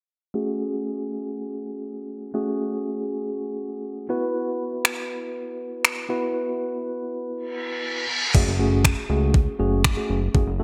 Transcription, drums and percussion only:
4.85 finger snap loud
5.85 finger snap loud
8.35 kick loud
8.35 crash medium
8.85 finger snap loud
8.85 kick loud
9.34 kick loud
9.84 finger snap loud
9.84 kick loud
10.35 kick loud

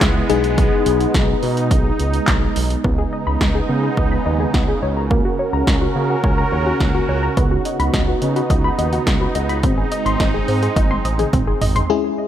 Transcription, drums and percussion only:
0.01 kick loud
0.01 snare loud
0.01 clap medium
0.01 closed hi-hat medium
0.30 closed hi-hat medium
0.44 closed hi-hat medium
0.58 kick loud
0.58 closed hi-hat medium
0.86 closed hi-hat medium
1.01 closed hi-hat medium
1.14 kick loud
1.14 snare loud
1.14 closed hi-hat medium
1.43 open hi-hat medium
1.57 closed hi-hat medium
1.71 kick loud
1.71 closed hi-hat medium
2.00 closed hi-hat medium
2.14 closed hi-hat medium
2.28 kick loud
2.28 snare loud
2.28 clap medium
2.28 closed hi-hat medium
2.56 open hi-hat medium
2.70 closed hi-hat medium
2.84 kick loud
3.41 kick loud
3.41 snare loud
3.97 kick loud
4.54 kick loud
4.54 snare loud
5.11 kick loud
5.67 kick loud
5.67 snare loud
6.24 kick loud
6.80 kick loud
6.80 snare loud
7.37 kick loud
7.37 closed hi-hat medium
7.65 closed hi-hat medium
7.80 closed hi-hat soft
7.94 kick loud
7.94 snare loud
7.94 closed hi-hat medium
8.22 closed hi-hat medium
8.36 closed hi-hat medium
8.50 kick loud
8.50 closed hi-hat medium
8.79 closed hi-hat medium
8.93 closed hi-hat medium
9.07 kick loud
9.07 snare loud
9.07 closed hi-hat medium
9.35 closed hi-hat medium
9.49 closed hi-hat medium
9.63 kick loud
9.63 closed hi-hat medium
9.92 closed hi-hat medium
10.06 closed hi-hat medium
10.20 kick loud
10.20 snare loud
10.20 closed hi-hat medium
10.48 open hi-hat medium
10.63 closed hi-hat medium
10.76 kick loud
10.76 closed hi-hat medium
10.76 high tom medium
10.91 high tom medium
11.05 closed hi-hat medium
11.19 closed hi-hat medium
11.19 mid tom medium
11.33 kick loud
11.33 closed hi-hat medium
11.33 mid tom medium
11.62 floor tom loud
11.62 open hi-hat medium
11.76 closed hi-hat medium
11.76 floor tom medium

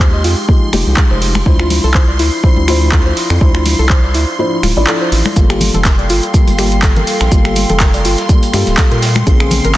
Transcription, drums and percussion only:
0.00 kick loud
0.24 open hi-hat medium
0.49 kick loud
0.73 finger snap medium
0.73 open hi-hat loud
0.73 high conga medium
0.97 kick loud
0.97 clap loud
1.22 open hi-hat medium
1.35 finger snap medium
1.35 high conga medium
1.46 kick loud
1.59 finger snap medium
1.70 open hi-hat medium
1.70 high conga medium
1.94 kick loud
1.94 clap loud
2.19 open hi-hat medium
2.44 kick loud
2.56 high conga medium
2.68 finger snap medium
2.68 open hi-hat loud
2.92 kick loud
2.92 clap loud
3.17 open hi-hat loud
3.30 finger snap medium
3.41 kick loud
3.55 finger snap medium
3.66 open hi-hat loud
3.66 high conga medium
3.89 kick loud
3.89 clap loud
4.14 open hi-hat medium
4.63 finger snap medium
4.63 open hi-hat medium
4.63 high conga medium
4.87 clap loud
5.12 open hi-hat loud
5.25 finger snap medium
5.25 high conga medium
5.36 kick loud
5.36 closed hi-hat medium
5.36 shaker medium
5.50 finger snap medium
5.50 closed hi-hat soft
5.61 open hi-hat loud
5.61 high conga medium
5.61 low conga medium
5.61 shaker medium
5.74 closed hi-hat medium
5.74 low conga medium
5.85 kick loud
5.85 snare loud
5.85 clap loud
5.85 closed hi-hat medium
5.85 shaker medium
5.99 closed hi-hat soft
6.10 open hi-hat loud
6.10 shaker medium
6.23 closed hi-hat soft
6.34 kick loud
6.34 closed hi-hat medium
6.34 shaker medium
6.47 closed hi-hat soft
6.47 high conga medium
6.58 finger snap medium
6.58 open hi-hat loud
6.58 shaker medium
6.72 closed hi-hat medium
6.82 kick loud
6.82 snare loud
6.82 clap loud
6.82 closed hi-hat medium
6.82 shaker medium
6.96 closed hi-hat soft
6.96 low conga medium
7.07 open hi-hat loud
7.07 shaker medium
7.21 finger snap medium
7.21 snare soft
7.21 closed hi-hat medium
7.32 kick loud
7.32 closed hi-hat medium
7.32 shaker medium
7.45 finger snap medium
7.45 closed hi-hat soft
7.56 open hi-hat loud
7.56 high conga medium
7.56 shaker medium
7.69 closed hi-hat medium
7.69 low conga medium
7.80 kick loud
7.80 snare loud
7.80 clap loud
7.80 closed hi-hat medium
7.80 shaker medium
7.94 closed hi-hat soft
8.05 open hi-hat loud
8.05 shaker medium
8.18 snare medium
8.18 closed hi-hat medium
8.29 kick loud
8.29 closed hi-hat medium
8.29 shaker medium
8.43 closed hi-hat soft
8.53 finger snap medium
8.53 open hi-hat loud
8.53 high conga medium
8.53 shaker medium
8.67 snare soft
8.67 closed hi-hat medium
8.77 kick loud
8.77 snare loud
8.77 clap loud
8.77 closed hi-hat medium
8.77 shaker medium
8.91 closed hi-hat soft
9.02 snare loud
9.02 open hi-hat loud
9.02 shaker medium
9.16 finger snap medium
9.16 closed hi-hat medium
9.16 high conga medium
9.27 kick loud
9.27 closed hi-hat medium
9.27 shaker medium
9.40 finger snap medium
9.40 closed hi-hat soft
9.51 open hi-hat loud
9.51 high conga medium
9.51 low conga medium
9.51 shaker medium
9.64 closed hi-hat soft
9.64 low conga medium

